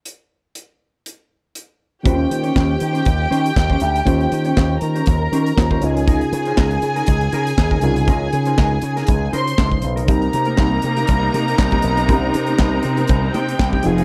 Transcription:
<<
  \new Staff \with { instrumentName = "Violin section" } { \time 4/4 \key ees \mixolydian \tempo 4 = 120 r1 | <g' g''>1~ | <g' g''>4. <bes' bes''>2 <aes' aes''>8~ | <aes' aes''>1~ |
<aes' aes''>2~ <aes' aes''>8 <c'' c'''>4 r8 | <bes' bes''>1~ | <bes' bes''>2~ <bes' bes''>8 <g' g''>4 <aes' aes''>8 | }
  \new Staff \with { instrumentName = "Clean electric guitar" } { \time 4/4 \key ees \mixolydian r1 | <des' g' c''>8 r16 <des' g' des''>16 <des' g' c''>16 r8 <des' g' c''>16 r8 <des' g' c''>16 r8 <des' g' c''>16 r8 | <des' g' c''>16 r8 <des' g' des''>16 <des' g' c''>16 r8 <des' g' c''>16 r8 <des' g' c''>16 r8 <des' g' c''>16 r8 | <ees' f' bes'>16 r8 <ees' f' c''>16 <ees' f' bes'>16 r8 <ees' f' bes'>16 r8 <ees' f' bes'>16 r8 <ees' f' bes'>16 r8 |
<ees' f' bes'>16 r8 <ees' f' c''>16 <ees' f' bes'>16 r8 <ees' f' bes'>16 r8 <ees' f' bes'>16 r16 <ees' f' bes'>8 r16 <ees' f' bes'>16 | <bes ees' g'>16 r8 <bes ees' bes'>16 <bes ees' g'>16 r8 <bes ees' g'>16 r8 <bes ees' g'>16 r8 <bes ees' g'>16 r8 | <bes ees' g'>16 r8 <bes ees' bes'>16 <bes ees' g'>16 r8 <bes ees' g'>16 r8 <bes ees' g'>16 r8 <bes ees' g'>16 r8 | }
  \new Staff \with { instrumentName = "Reed electric piano" } { \time 4/4 \key ees \mixolydian r1 | <ees bes des' f' g' c''>1 | <ees bes des' f' g' c''>2. <ees bes des' f' g' c''>8 <des des' ees' f' bes'>8~ | <des des' ees' f' bes'>2.~ <des des' ees' f' bes'>8 <des des' ees' f' bes'>8~ |
<des des' ees' f' bes'>2.~ <des des' ees' f' bes'>8 r8 | <c c' ees' g' bes'>1 | <c c' des' ees' g' bes'>2.~ <c c' des' ees' g' bes'>8 <f c' ees' f' aes'>8 | }
  \new Staff \with { instrumentName = "String section" } { \time 4/4 \key ees \mixolydian << { r1 | r1 | r1 | r1 |
r1 | <c ees'>1~ | <c ees'>2.~ <c ees'>8 <f ees' aes'>8 | } \\ { r1 | r1 | r1 | r1 |
r1 | bes1 | c'2.~ c'8 f'8 | } >> }
  \new Staff \with { instrumentName = "Slap bass" } { \clef bass \time 4/4 \key ees \mixolydian r1 | ees,8 ees8 ees,8 ees8 ees,8 ees8 ees,8 d,8 | ees,8 ees8 ees,8 ees8 ees,8 ees8 ees,8 des,8~ | des,8 des8 des,8 des8 des,8 des8 ees,8 c,8 |
des,8 des8 des,8 des8 des,8 des8 des,8 b,,8 | c,8 c8 c,8 c8 c,8 c8 c,8 b,,8 | c,8 c8 c,8 c8 c,8 c8 c,8 f,,8 | }
  \new DrumStaff \with { instrumentName = "Drums" } \drummode { \time 4/4 hh4 hh4 hh4 hh4 | <hh bd>8 hh16 hh16 <hc bd sn>8 hh16 hh16 <hh bd>8 hh16 hh16 <hc bd sn>16 bd16 hh16 hh16 | <hh bd>16 hh16 hh16 hh16 <hc bd sn>8 hh16 hh16 <hh bd>8 hh16 hh16 <hc bd sn>16 bd16 hh16 hh16 | <hh bd>16 hh16 hh16 hh16 <hc bd sn>16 hh16 hh16 hh16 <hh bd>16 hh16 hh16 hh16 <hc bd sn>16 bd16 hh16 hh16 |
<hh bd>8 hh16 hh16 <hc bd sn>8 hh16 <hh sn>16 <hh bd>8 hh16 hh16 <hc bd sn>16 bd16 hh16 hh16 | <hh bd>16 hh16 hh16 hh16 <hc bd sn>8 hh16 hh16 <hh bd>8 hh16 hh16 <hc bd sn>16 <hh bd>16 hh16 hh16 | <hh bd>8 hh16 hh16 <hc bd sn>8 hh16 hh16 <hh bd>8 hh16 hh16 <hc bd sn>16 bd16 hh16 hh16 | }
>>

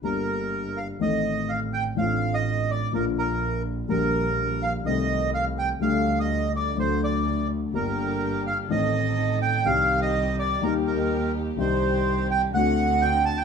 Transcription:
<<
  \new Staff \with { instrumentName = "Bandoneon" } { \time 4/4 \key g \minor \tempo 4 = 125 bes'4. f''8 ees''4 f''8 g''8 | f''8. ees''8. d''8 bes'8 bes'4 r8 | bes'4. f''8 ees''4 f''8 g''8 | f''8. ees''8. d''8 c''8 d''4 r8 |
bes'4. f''8 ees''4. g''8 | f''8. ees''8. d''8 bes'8 bes'4 r8 | c''4. g''8 fis''4 g''8 a''16 g''16 | }
  \new Staff \with { instrumentName = "String section" } { \time 4/4 \key g \minor r1 | r1 | r1 | r1 |
<bes d' g'>2 <c' ees' a'>2 | <c' ees' g'>2 <bes ees' g'>2 | <c' ees' g'>2 <c' d' fis'>2 | }
  \new Staff \with { instrumentName = "Grand piano" } { \clef bass \time 4/4 \key g \minor <g,, g, d g bes g'>2 <a,, a, ees a c' a'>2 | <a,, a, d a c' f'>2 <bes,, bes, d f bes f'>2 | <bes,, bes, d g bes g'>2 <c, c ees a c' a'>2 | <d, d g a g'>2 <d, d fis a fis'>2 |
<g,, g, d g bes g'>2 <a,, a, ees a c' a'>2 | <c, c ees g c' g'>2 <ees, ees g bes g'>2 | <c, c ees g c' g'>2 <d, d a c' fis'>2 | }
  \new Staff \with { instrumentName = "Double bass" } { \clef bass \time 4/4 \key g \minor g,,2 a,,2 | a,,2 bes,,2 | bes,,2 c,2 | d,2 d,2 |
g,,2 a,,2 | c,2 ees,2 | c,2 d,2 | }
>>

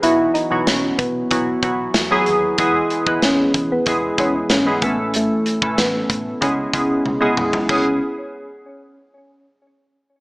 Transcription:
<<
  \new Staff \with { instrumentName = "Soft synth lead" } { \time 4/4 \key cis \minor \tempo 4 = 94 e'8 dis'8 cis'8 b2 r8 | r4 cis'8. b8. cis'8 cis'8 b8 | a4 b4 cis'4. r8 | cis'8 r2. r8 | }
  \new Staff \with { instrumentName = "Synth keys" } { \time 4/4 \key cis \minor <e fis b e' fis'>8 r16 <e fis b e' fis'>4 r16 <e fis b e' fis'>16 r16 <e fis b e' fis'>8 r16 <e fis b e' gis'>8 r16 | <e gis b e' gis'>8 r16 <e gis b e' b'>4 r16 <e gis b e' gis'>16 r16 <e gis b e' gis'>8 r16 <e gis b e' gis'>16 <e a cis' e' a'>8~ | <e a cis' e' a'>8 r16 <e a cis' e' a'>4 r16 <gis b cis' e' gis'>16 r16 <gis b cis' e' gis'>8 r16 <gis b cis' e' gis'>8 r16 | <b cis' e' gis'>8 r2. r8 | }
  \new Staff \with { instrumentName = "Fingered electric bass" } { \clef bass \time 4/4 \key cis \minor b,,8 r16 b,,16 b,,8 b,8 b,,8 b,,8 e,8 dis,8 | e,8 r16 e,16 e,8 e8 e,8 e,8 gis,8 a,,8~ | a,,8 r16 a,,16 a,,8 a,8 cis,8 cis,8 cis,8 b,,8 | cis,8 r2. r8 | }
  \new DrumStaff \with { instrumentName = "Drums" } \drummode { \time 4/4 hh8 hh8 <hh sn tamb>8 <hh bd>8 <hh bd>8 <hh bd>8 <hh sn tamb>8 hh8 | <hh bd>8 hh16 bd16 <hh sn tamb>8 <hh bd>8 <hh bd>8 <hh bd>8 <hh sn tamb>8 <hh bd>8 | hh8 hh16 bd16 <hh sn tamb>8 <hh bd>8 <hh bd>8 <hh bd>8 tommh8 toml16 tomfh16 | <cymc bd>4 r4 r4 r4 | }
>>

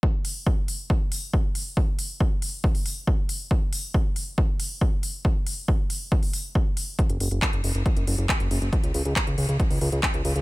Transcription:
<<
  \new Staff \with { instrumentName = "Analog synth bass" } { \clef bass \time 4/4 \key cis \phrygian \tempo 4 = 138 r1 | r1 | r1 | r1 |
r16 fis,,16 fis,,16 fis,,16 r16 fis,,16 fis,,16 fis,,16 r16 fis,,16 fis,,16 fis,,16 r16 fis,,16 fis,,16 fis,,16 | r16 cis,16 cis,16 cis,16 r16 cis,16 cis,16 cis,16 r16 cis,16 cis,16 cis,16 r16 cis,16 cis,16 cis,16 | }
  \new DrumStaff \with { instrumentName = "Drums" } \drummode { \time 4/4 bd8 hho8 bd8 hho8 bd8 hho8 bd8 hho8 | bd8 hho8 bd8 hho8 bd16 hho16 hho8 bd8 hho8 | bd8 hho8 bd8 hho8 bd8 hho8 bd8 hho8 | bd8 hho8 bd8 hho8 bd16 hho16 hho8 bd8 hho8 |
<hh bd>16 hh16 hho16 hh16 <hc hh bd>16 hh16 hho16 hh16 <hh bd>16 hh16 hho16 hh16 <hc hh bd>16 hh16 hho16 hh16 | <hh bd>16 hh16 hho16 hh16 <hc hh bd>16 hh16 hho16 hh16 <hh bd>16 hho16 hho16 hh16 <hc hh bd>16 hh16 hho16 hh16 | }
>>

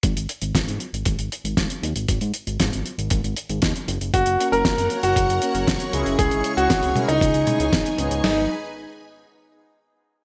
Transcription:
<<
  \new Staff \with { instrumentName = "String machine" } { \time 4/4 \key gis \minor \tempo 4 = 117 << { r1 | r1 | <cis'' cis'''>1~ | <cis'' cis'''>1 |
<dis' gis' b' gis'' b''>8 r2. r8 | } \\ { r1 | r1 | <ais' fis''>1 | <gis' gis''>1 |
r1 | } >> }
  \new Staff \with { instrumentName = "Grand piano" } { \time 4/4 \key gis \minor r1 | r1 | fis'8 r16 ais'8. r16 fis'2 r16 | gis'8 r16 fis'8. r16 dis'2 r16 |
dis'8 r2. r8 | }
  \new Staff \with { instrumentName = "Analog polysynth" } { \time 4/4 \key gis \minor r1 | r1 | r8 <ais cis' fis' ais'>4 <ais cis' fis' cis''>8 r8 <ais cis' fis' ais'>8 r8 <cis gis cis' e' gis'>8~ | <cis gis cis' e' gis'>8 <cis gis cis' e' gis'>4 <cis gis cis' e' ais'>8 r8 <cis gis cis' e' gis'>8 r8 <gis, gis b dis' gis'>8 |
<gis b dis' gis'>8 r2. r8 | }
  \new Staff \with { instrumentName = "Analog synth bass" } { \clef bass \time 4/4 \key gis \minor gis,,16 gis,,16 r16 gis,,16 gis,,16 gis,16 r16 gis,,16 gis,,16 gis,,16 r16 gis,,16 gis,,16 r16 dis,16 gis,,16 | gis,,16 gis,16 r16 gis,,16 gis,16 gis,,16 r16 gis,,16 gis,,16 gis,,16 r16 gis,,16 dis,16 r16 fis,,16 fis,,16 | fis,,16 fis,,16 r16 fis,,16 fis,,16 fis,16 r16 fis,,16 fis,,16 fis,,16 r16 fis,,16 fis,,16 r16 cis,16 fis,,16 | cis,16 gis,,16 r16 cis,16 gis,,16 cis,16 r16 cis,16 cis,16 cis,16 r16 cis,16 gis,,16 r16 cis,16 cis,16 |
gis,,8 r2. r8 | }
  \new DrumStaff \with { instrumentName = "Drums" } \drummode { \time 4/4 <hh bd>16 hh16 hh16 hh16 <hh bd sn>16 hh16 hh16 hh16 <hh bd>16 hh16 hh16 hh16 <hh bd sn>16 hh16 hh16 hh16 | <hh bd>16 hh16 hh16 hh16 <hh bd sn>16 hh16 hh16 hh16 <hh bd>16 hh16 hh16 hh16 <hh bd sn>16 hh16 hh16 hh16 | <hh bd>16 hh16 hh16 hh16 <hh bd sn>16 hh16 hh16 hh16 <hh bd>16 hh16 hh16 hh16 <hh bd sn>16 hh16 hh16 hh16 | <hh bd>16 hh16 hh16 hh16 <hh bd sn>16 hh16 <hh tommh>16 hh16 <hh bd>16 hh16 <hh tommh>16 hh16 <hh bd sn>16 hh16 hh16 hh16 |
<hho sn>4 r4 r4 r4 | }
>>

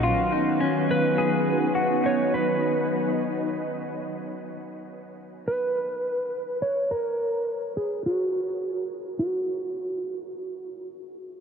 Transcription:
<<
  \new Staff \with { instrumentName = "Electric slide guitar" } { \time 4/4 \key b \lydian \tempo 4 = 105 r4. b'4. r8 cis''8 | b'4. r2 r8 | r4. b'2 cis''8 | ais'4. gis'8 fis'4. r8 |
fis'1 | }
  \new Staff \with { instrumentName = "Clean electric guitar" } { \time 4/4 \key b \lydian eis'8 dis'8 cis'4 gis'4 fis'8 dis'8 | r1 | r1 | r1 |
r1 | }
  \new Staff \with { instrumentName = "String machine" } { \time 4/4 \key b \lydian << { <dis fis b fis'>1~ | <dis fis b fis'>1 | r1 | r1 |
r1 | } \\ { cis'1 | dis'1 | r1 | r1 |
r1 | } >> }
>>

